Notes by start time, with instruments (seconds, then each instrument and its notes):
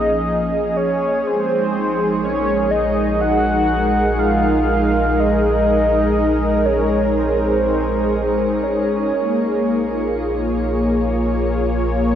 Already playing: analog synth bass A#1, analog synth pad F3 A#3 C#4 G#4, soft synth lead D#5
0.77 soft synth lead C#5
1.27 analog synth bass A#1, soft synth lead C5
1.32 analog synth pad G#3
1.50 analog synth pad D#4
2.05 analog synth pad A#4
2.24 soft synth lead C#5
2.71 soft synth lead D#5
3.21 soft synth lead F#5
4.19 soft synth lead F5
5.20 soft synth lead D#5
6.65 soft synth lead C#5
7.18 soft synth lead C5
8.63 soft synth lead C#5
9.14 analog synth bass A#1, analog synth pad A#3
9.87 analog synth pad F4
10.27 analog synth pad C#5